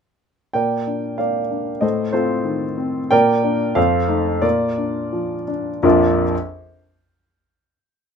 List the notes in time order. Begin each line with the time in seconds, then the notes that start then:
0.53 A#2 A#4 D5 G5
0.87 D4
1.18 A#3 A#4 D5 F5
1.51 D4
1.81 A2 A4 C5 D#5
2.12 C4 F4 A4 C5
2.44 D#3
2.78 C4
3.11 A#2 A#4 D5 G5
3.43 A#3 D4
3.75 F2 A4 C5 F5
4.08 A3 D#4
4.42 A#2 F4 A#4 D5
4.78 D4
5.13 F3
5.48 D4
5.83 A#1 F2 F3 A#3 D4 F4